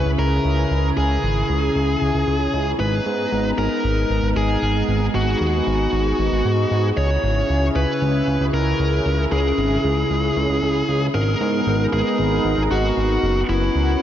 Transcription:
0.00 2.76 C#3 medium
0.00 2.76 C#4 medium
0.00 2.76 E4 medium
0.00 2.76 G#4 medium
0.06 0.16 C#2 medium
0.19 0.40 C#2 medium
0.19 0.87 A#4 medium
0.45 0.66 C#2 medium
0.71 0.92 C#2 medium
0.97 1.18 C#2 medium
0.97 2.69 G#4 medium
1.24 1.44 G#1 medium
1.50 1.70 C#2 medium
1.76 1.96 C#2 medium
2.02 2.12 C#2 loud
2.15 2.25 C#2 medium
2.28 2.48 C#2 medium
2.54 2.74 C#2 medium
2.80 3.01 G#1 loud
2.80 6.93 G#3 medium
2.80 6.93 B3 medium
2.80 6.93 D#4 medium
2.80 3.48 B4 medium
2.80 4.87 A#5 medium
3.06 3.27 G#2 loud
3.32 3.53 G#1 medium
3.58 3.68 G#1 medium
3.58 4.26 A#4 medium
3.84 4.05 G#1 medium
4.10 4.21 G#1 medium
4.23 4.34 G#1 medium
4.37 4.57 G#1 medium
4.37 5.04 G#4 medium
4.63 4.83 G#1 medium
4.89 5.09 G#1 medium
4.89 11.11 G#4 medium
5.15 5.35 G#1 medium
5.15 6.87 F#4 medium
5.41 5.61 D#2 medium
5.67 5.87 G#1 loud
5.93 6.14 G#1 medium
6.19 6.29 G#1 loud
6.32 6.42 G#1 medium
6.45 6.66 G#2 loud
6.71 6.92 G#2 medium
6.97 7.18 C#2 medium
6.97 11.11 C#3 medium
6.97 11.11 C#4 medium
6.97 11.11 E4 medium
6.97 7.65 C#5 medium
7.24 7.44 G#1 medium
7.50 7.70 C#2 medium
7.76 7.86 C#2 medium
7.76 8.44 B4 medium
8.02 8.22 C#2 medium
8.28 8.38 C#2 medium
8.41 8.51 C#2 loud
8.54 8.74 C#2 medium
8.54 9.22 A#4 medium
8.80 9.00 C#2 medium
9.06 9.27 C#2 medium
9.32 9.53 C#2 medium
9.32 11.04 G#4 medium
9.58 9.79 G#1 medium
9.84 10.05 C#2 loud
10.10 10.31 C#2 medium
10.37 10.47 C#2 loud
10.50 10.60 C#2 medium
10.63 10.83 C#2 medium
10.89 11.09 C#2 loud
11.15 11.35 G#1 loud
11.15 13.21 G#3 medium
11.15 13.21 B3 medium
11.15 13.21 D#4 medium
11.15 11.83 A#4 medium
11.15 13.21 A#4 medium
11.41 11.61 G#2 medium
11.67 11.87 G#1 loud
11.93 12.03 G#1 medium
11.93 12.61 G#4 medium
12.19 12.40 G#1 medium
12.45 12.55 G#1 medium
12.58 12.69 G#1 medium
12.71 12.92 G#1 loud
12.71 13.39 F#4 medium
12.97 13.18 G#1 medium
13.23 13.44 F#1 medium
13.23 14.02 B3 medium
13.23 14.02 C#4 medium
13.23 14.02 F#4 medium
13.49 13.70 F#1 medium
13.49 14.02 E4 medium
13.76 13.96 C#2 medium

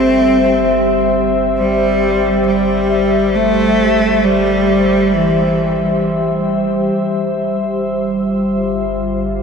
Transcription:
0.00 6.90 G1 medium
0.00 9.43 G3 medium
0.00 1.12 C4 loud
0.00 6.96 G4 medium
0.00 8.89 C5 medium
0.00 8.61 E5 medium
1.59 2.43 G3 medium
2.46 3.36 G3 medium
3.35 4.26 A3 medium
4.24 5.15 G3 medium
5.13 6.04 E3 medium
6.95 9.43 G1 medium
7.77 9.43 F4 medium

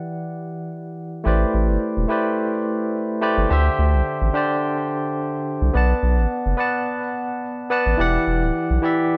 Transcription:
0.00 1.22 E3 medium
0.00 1.23 E4 medium
0.00 1.23 G4 medium
0.00 1.23 D5 medium
0.00 1.24 F#5 medium
1.24 1.45 A1 medium
1.24 2.06 A3 medium
1.24 2.06 E4 medium
1.24 2.07 G4 medium
1.24 2.07 B4 medium
1.24 2.08 C5 medium
1.24 2.08 D5 medium
1.54 1.71 A1 medium
1.69 1.78 G1 medium
1.97 2.06 E1 loud
2.08 3.18 A3 medium
2.08 3.19 E4 medium
2.08 3.19 G4 medium
2.08 3.19 B4 medium
2.08 3.20 C5 medium
2.08 3.20 D5 medium
3.21 3.47 A3 medium
3.21 3.47 E4 medium
3.21 3.47 G4 medium
3.21 3.47 B4 medium
3.21 3.48 C5 medium
3.21 3.48 D5 loud
3.38 3.46 G1 medium
3.49 3.69 D2 medium
3.49 4.31 D3 medium
3.49 4.31 D4 medium
3.49 4.32 G4 medium
3.49 4.32 C5 medium
3.49 4.33 E5 loud
3.79 3.95 D2 medium
3.94 4.02 C2 medium
4.22 4.30 A1 loud
4.33 5.71 D3 medium
4.33 5.71 D4 medium
4.33 5.72 G4 medium
4.33 5.72 C5 medium
4.33 5.73 D5 medium
5.62 5.70 C2 medium
5.73 5.94 B1 loud
5.73 6.55 B3 medium
5.73 6.56 B4 medium
5.73 6.56 D5 medium
5.73 6.57 F#5 medium
5.73 6.57 A5 medium
6.03 6.19 B1 medium
6.18 6.26 A1 medium
6.46 6.54 F#1 loud
6.57 7.67 B3 medium
6.57 7.67 B4 medium
6.57 7.68 D5 medium
6.57 7.68 F#5 medium
6.57 7.69 A5 medium
7.70 7.96 B3 medium
7.70 7.96 B4 medium
7.70 7.96 D5 medium
7.70 7.96 F#5 medium
7.70 7.97 A5 loud
7.86 7.95 A1 medium
7.97 8.18 E1 loud
7.97 8.79 E3 medium
7.97 8.80 E4 medium
7.97 8.80 G4 medium
7.97 8.81 D5 medium
7.97 8.81 F#5 loud
8.27 8.44 E1 medium
8.42 8.51 D1 medium
8.70 8.79 B1 loud
8.82 9.17 E3 medium
8.82 9.17 E4 medium
8.82 9.17 G4 medium
8.82 9.17 D5 medium
8.82 9.17 E5 medium

